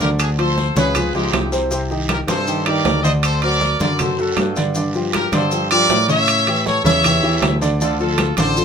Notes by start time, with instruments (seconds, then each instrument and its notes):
Already playing: picked electric bass D2
0.00 grand piano D3 D4 D5, trumpet section G4 A#4, high conga, short guiro, maracas
0.19 trumpet section D4 G#4, high timbale, long guiro, claves, maracas
0.38 grand piano F3 F4 C5, trumpet section A4 C5, high conga, high timbale, maracas
0.58 high conga, low timbale, short guiro, maracas
0.75 picked electric bass C#2, grand piano C#3 C#4 C#5, trumpet section G#4 B4, high conga, short guiro, maracas
0.95 grand piano F3 F4 G#4, high conga, low conga, high timbale, long guiro, claves, maracas
1.14 picked electric bass C#2, grand piano F3 G#3 F4, trumpet section D#4 G4, high conga, maracas
1.33 picked electric bass C2, high conga, high timbale, low timbale, short guiro, claves, maracas
1.52 grand piano C3 C4 C5, short guiro, maracas
1.71 grand piano C3 C4 C5, high conga, long guiro, maracas
1.90 grand piano D#3 D#4 G4, high conga, maracas
2.09 trumpet section G4 A#4, high conga, high timbale, low timbale, short guiro, claves, maracas
2.27 picked electric bass G2, grand piano C3 C4 C5, trumpet section A4 C5, high conga, high timbale, short guiro, maracas
2.47 grand piano D#3 D#4 G4, high conga, long guiro, maracas
2.65 grand piano D#3 D#4 G4, trumpet section A#4 D5, high conga, high timbale, claves, maracas
2.85 picked electric bass D2, high conga, high timbale, low timbale, short guiro, maracas
3.03 grand piano D3 D4 D5, trumpet section C5 D#5, short guiro, maracas
3.23 trumpet section A4 C5, high conga, high timbale, long guiro, claves, maracas
3.42 grand piano F#3 F#4 C5, trumpet section A#4 D5, high conga, high timbale, maracas
3.61 high conga, low timbale, short guiro, maracas
3.80 picked electric bass F#2, grand piano D3 D4 D5, trumpet section A#4 D5, high conga, short guiro, maracas
3.99 grand piano F#3 F#4 A4, trumpet section A4 C5, high conga, low conga, high timbale, long guiro, claves, maracas
4.19 grand piano F#3 F#4 A4, trumpet section F#4 A4, high conga, maracas
4.37 picked electric bass G2, high conga, high timbale, low timbale, short guiro, claves, maracas
4.56 grand piano D3 D4 D5, high conga, short guiro, maracas
4.75 grand piano D3 D4 D5, high conga, long guiro, maracas
4.94 grand piano F3 F4 G4, high conga, maracas
5.13 trumpet section G4 A#4, high conga, high timbale, low timbale, short guiro, claves, maracas
5.32 picked electric bass G2, grand piano D3 D4 D5, trumpet section A4 C5, high conga, high timbale, short guiro, maracas
5.51 grand piano F3 F4 G4, high conga, long guiro, maracas
5.70 grand piano F3 F4 G4, trumpet section A#4 D5, high conga, high timbale, claves
5.89 picked electric bass A2, high conga, high timbale, low timbale, short guiro, maracas
6.08 grand piano C#3 C#4 C#5, trumpet section C#5 E5, short guiro, maracas
6.27 high conga, high timbale, long guiro, claves, maracas
6.47 grand piano E3 E4 G4, high conga, high timbale, maracas
6.66 trumpet section A4 C#5, high conga, low timbale, short guiro, maracas
6.84 picked electric bass E2, grand piano C#3 C#4 C#5, trumpet section C#5 E5, high conga, short guiro, maracas
7.04 grand piano E3 E4 G4, high conga, low conga, high timbale, long guiro, claves, maracas
7.23 picked electric bass E2, grand piano E3 E4 G4, high conga, maracas
7.42 picked electric bass D2, high conga, high timbale, low timbale, short guiro, claves, maracas
7.61 grand piano D3 D4 D5, short guiro, maracas
7.80 grand piano D3 D4 D5, trumpet section F4 A4, high conga, long guiro, maracas
7.99 grand piano F3 F4 A4, trumpet section F4 A4, high conga, maracas
8.18 high conga, high timbale, low timbale, short guiro, claves, maracas
8.37 picked electric bass A1, grand piano D3 D4 D5, trumpet section A4 C5, high conga, high timbale, short guiro, maracas
8.56 grand piano F3 F4 A4, high conga, long guiro, maracas